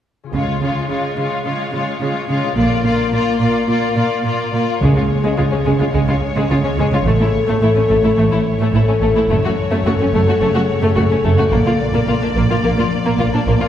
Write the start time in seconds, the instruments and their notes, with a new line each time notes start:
0.24 harp C#3 C#4 F4
0.29 harp G#4
0.33 double bass section C#2, cello section C#3, viola section G#3, violin section F4 C#5
0.61 cello section C#3, viola section G#3, violin section F4 C#5
0.89 cello section C#3, viola section G#3, violin section F4 C#5
1.17 cello section C#3, viola section G#3, violin section F4 C#5
1.44 cello section C#3, viola section G#3, violin section F4 C#5
1.73 cello section C#3, viola section G#3, violin section F4 C#5
2.00 cello section C#3, viola section G#3, violin section F4 C#5
2.29 cello section C#3, viola section G#3, violin section F4 C#5
2.38 harp A#2
2.43 harp D4
2.47 harp F4
2.52 harp A#4
2.56 double bass section A#1, cello section A#2, viola section A#3, violin section F4 D5
2.84 cello section A#2, viola section A#3, violin section F4 D5
3.13 cello section A#2, viola section A#3, violin section F4 D5
3.39 cello section A#2, viola section A#3, violin section F4 D5
3.68 cello section A#2, viola section A#3, violin section F4 D5
3.95 cello section A#2, viola section A#3, violin section F4 D5
4.24 cello section A#2, viola section A#3, violin section F4 D5
4.52 cello section A#2, viola section A#3, violin section F4 D5
4.80 double bass section C#2, timpani C#3, harp C#3, cello section C#3, viola section G#3, violin section G#3 C#5
4.95 cello section C#3, viola section G#3, violin section F4
5.10 harp C#4
5.24 cello section C#3, viola section G#3, violin section G#3
5.37 double bass section C#2, cello section C#3, viola section G#3, violin section F4, harp G#4
5.51 cello section C#3, viola section G#3, violin section C#4
5.65 double bass section C#2, cello section C#3, violin section G#3, viola section G#3, harp F4
5.80 cello section C#3, viola section G#3, violin section F4
5.93 double bass section C#2, cello section C#3, harp G#3, viola section G#3, violin section G#3
6.08 cello section C#3, viola section G#3, violin section F4
6.22 harp C#4
6.36 cello section C#3, viola section G#3, violin section G#3
6.50 double bass section C#2, cello section C#3, viola section G#3, violin section F4, harp G#4
6.64 cello section C#3, viola section G#3, violin section C#4
6.77 double bass section C#2, cello section C#3, viola section G#3, violin section G#3, harp F4
6.93 cello section C#3, viola section G#3, violin section F4
7.05 double bass section A1, harp A2, cello section A2, viola section A3, violin section A3
7.19 cello section A2, viola section A3, violin section E4
7.34 harp C#4
7.47 cello section A2, viola section A3, violin section A3
7.61 double bass section A1, cello section A2, viola section A3, violin section E4, harp A4
7.75 cello section A2, viola section A3, violin section C#4
7.89 double bass section A1, cello section A2, viola section A3, violin section A3, harp E4
8.03 cello section A2, viola section A3, violin section E4
8.17 double bass section A1, cello section A2, harp E3, violin section A3, viola section A3
8.31 cello section A2, viola section A3, violin section E4
8.46 harp C#4
8.59 cello section A2, viola section A3, violin section A3
8.73 double bass section A1, cello section A2, viola section A3, violin section E4, harp A4
8.88 cello section A2, viola section A3, violin section C#4
9.01 double bass section A1, cello section A2, violin section A3, viola section A3, harp E4
9.15 cello section A2, viola section A3, violin section E4
9.29 double bass section F#1, cello section F#2, harp F#2, violin section A3 C#5, viola section A3
9.44 cello section F#2, viola section A3, violin section F#4
9.58 harp C#4
9.72 cello section F#2, violin section A3, viola section A3
9.85 double bass section F#1, cello section F#2, viola section A3, violin section F#4, harp A4
9.99 cello section F#2, viola section A3, violin section C#4
10.13 double bass section F#1, cello section F#2, viola section A3, violin section A3, harp F#4
10.27 cello section F#2, viola section A3, violin section F#4
10.40 double bass section F#1, cello section F#2, harp C#3, viola section A3, violin section A3
10.54 cello section F#2, viola section A3, violin section F#4
10.69 harp C#4
10.82 cello section F#2, viola section A3, violin section A3
10.96 double bass section F#1, cello section F#2, viola section A3, violin section F#4, harp A4
11.11 cello section F#2, viola section A3, violin section C#4
11.24 double bass section F#1, cello section F#2, viola section A3, violin section A3, harp F#4
11.38 cello section F#2, viola section A3, violin section F#4
11.52 double bass section A#1, harp A#2, cello section A#2, violin section A#3 D5, viola section A#3
11.66 cello section A#2, viola section A#3, violin section F4
11.81 harp D4
11.94 cello section A#2, violin section A#3, viola section A#3
12.08 double bass section A#1, cello section A#2, viola section A#3, violin section F4, harp A#4
12.22 cello section A#2, viola section A#3, violin section D4
12.35 double bass section A#1, cello section A#2, viola section A#3, violin section A#3, harp F4
12.50 cello section A#2, viola section A#3, violin section F4
12.63 double bass section A#1, cello section A#2, harp F3, viola section A#3, violin section A#3
12.77 cello section A#2, viola section A#3, violin section F4
12.91 harp D4
13.05 cello section A#2, viola section A#3, violin section A#3
13.19 double bass section A#1, cello section A#2, viola section A#3, violin section F4, harp A#4
13.34 cello section A#2, viola section A#3, violin section D4
13.46 double bass section A#1, cello section A#2, violin section A#3, viola section A#3, harp F4
13.60 cello section A#2, viola section A#3, violin section F4